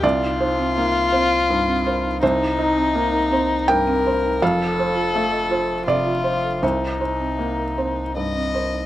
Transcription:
<<
  \new Staff \with { instrumentName = "Felt piano" } { \time 3/4 \key c \dorian \tempo 4 = 82 << { d''2. | c''2 g''4 | f''2 d''4 | c''2~ c''8 r8 | } \\ { c,8 c''8 bes8 c''8 g,8 c''8 | c,8 ees'8 bes8 c''8 g,8 c''8 | f,8 c''8 a8 c''8 c8 c''8 | c,8 c''8 bes8 c''8 g,8 c''8 | } >> }
  \new Staff \with { instrumentName = "Violin" } { \time 3/4 \key c \dorian f'2. | ees'2 bes'4 | a'2 f'4 | ees'2 ees''4 | }
  \new Staff \with { instrumentName = "Marimba" } { \time 3/4 \key c \dorian c'16 ees'16 ees'16 c'16 ees'16 bes'16 c'16 r16 ees'16 c'16 bes'16 ees'16 | c'16 ees'16 ees'16 c'16 ees'16 bes'16 c'16 r16 ees'16 c'16 bes'16 ees'16 | f'16 a'16 a'16 f'16 a'16 ees''16 f'16 r16 a'16 f'16 ees''16 a'16 | c'16 ees'16 ees'16 c'16 ees'16 bes'16 c'16 r16 ees'16 c'16 bes'16 ees'16 | }
  \new Staff \with { instrumentName = "Sub bass" } { \clef bass \time 3/4 \key c \dorian c,2.~ | c,2. | f,,2. | c,2. | }
>>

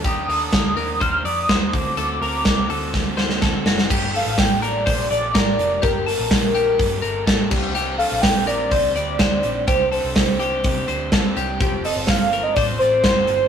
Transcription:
<<
  \new Staff \with { instrumentName = "Soft synth lead" } { \time 4/4 \key g \minor \tempo 4 = 125 ees'''4 ees'''4 f'''8 ees'''4 d'''8~ | d'''2. r4 | r8 f''8 g''8 d''4 d''4. | bes'8 bes'2. r8 |
r8 f''8 g''8 d''4 d''4. | c''8 c''2. r8 | r8 ees''8 f''8. ees''16 d''8 c''4. | }
  \new Staff \with { instrumentName = "Clean electric guitar" } { \time 4/4 \key g \minor g'8 a'4 bes'8 c''8 d''8 c''4 | a'8 bes'4 a'4 c''8 a'8 fis'8 | g'8 a'4 bes'8 c''8 d''8 bes'4 | g'8 a''4 g'4 bes'8 a'8 g'8 |
g'8 a'4 bes'8 c''8 d''8 c''4 | g'8 a'4 g'4 c''8 a'8 g'8 | g'8 a'4 bes'8 c''8 d''8 c''4 | }
  \new Staff \with { instrumentName = "Overdriven electric guitar" } { \time 4/4 \key g \minor <ees g bes d' bes'>8 <bes d' bes'>8 <g bes d' bes'>8 <bes d' bes'>8 <ees g bes d' bes'>8 <bes d' bes'>8 <g bes d' bes'>8 <c' fis' a'>8 | <d a c' fis' a'>8 <c' fis' a'>8 <a c' fis' a'>8 <c' fis' a'>8 <d a c' fis' a'>8 <c' fis' a'>8 <a c' fis' a'>8 <c' fis' a'>8 | <g, d g bes g' a'>8 <g bes g' a'>8 <g bes g' a'>8 <g bes g' a'>8 <g, d g bes g' a'>8 <g bes g' a'>8 <g bes g' a'>8 <g bes g' a'>8 | <g, d g bes g' a'>8 <g bes g' a'>8 <g bes g' a'>8 <g bes g' a'>8 <g, d g bes g' a'>8 <g bes g' a'>8 <g bes g' a'>8 <g c' d' g'>8 |
<c ees g c' d' g'>8 <g c' d' g'>8 <g c' d' g'>8 <g c' d' g'>8 <c ees g c' d' g'>8 <g c' d' g'>8 <g c' d' g'>8 <g c' d' g'>8 | <c ees g c' d' g'>8 <g c' d' g'>8 <g c' d' g'>8 <g c' d' g'>8 <c ees g c' d' g'>8 <g c' d' g'>8 <g c' d' g'>8 <g c' d' g'>8 | <f c' f' a'>8 <c' f' a'>8 <f c' f' a'>8 <c' f' a'>8 <f c' f' a'>8 <c' f' a'>8 <f c' f' a'>8 <c' f' a'>8 | }
  \new Staff \with { instrumentName = "Picked electric bass" } { \clef bass \time 4/4 \key g \minor ees,8 ees,8 d,8 ees,8 ees,8 f,8 ees,8 d,8 | d,8 d,8 c,8 d,4. d,8 fis,,8 | g,,8. a,,4~ a,,16 bes,,8 bes,,8 a,,8 f,,8 | g,,8. bes,,4~ bes,,16 g,8 g,,8 a,,8 c,8~ |
c,8. bes,,4~ bes,,16 c,8 d,8 d,8 bes,,8 | c,8. c,4~ c,16 c8 d,8. r16 c,8 | f,,8. g,,4~ g,,16 a,,8 a,,8 g,,8 g,,8 | }
  \new DrumStaff \with { instrumentName = "Drums" } \drummode { \time 4/4 <hh bd>8 hho8 <hh bd sn>8 hho8 <hh bd>8 hho8 <hh bd sn>8 <hho bd>8 | hh8 hho8 <hh bd sn>8 hho8 <bd sn>8 sn16 sn16 <bd sn>8 sn16 sn16 | <cymc bd>8 <hho hhp>8 <hho hhp bd sn>8 <hho hhp>8 <hho hhp bd>8 <hho hhp>8 <hho hhp bd sn>8 <hho hhp>8 | <hho hhp bd>8 <hho hhp>8 <hho hhp bd sn>8 <hho hhp>8 <hho hhp bd>8 <hho hhp>8 <hho hhp bd sn>8 <cymc bd>8 |
<hho hhp>8 <hho hhp>8 <hho hhp bd sn>8 <hho hhp>8 <hho hhp bd>8 <hho hhp>8 <hho hhp bd sn>8 <hho hhp>8 | <hho hhp bd>8 <hho hhp>8 <hho hhp bd sn>8 <hho hhp>8 <hho hhp bd>8 <hho hhp>8 <hho hhp bd sn>8 <hho hhp>8 | <hho hhp bd>8 <hho hhp>8 <hho hhp bd sn>8 <hho hhp>8 <hho hhp bd>8 <hho hhp>8 <hho hhp bd sn>8 <hho hhp>8 | }
>>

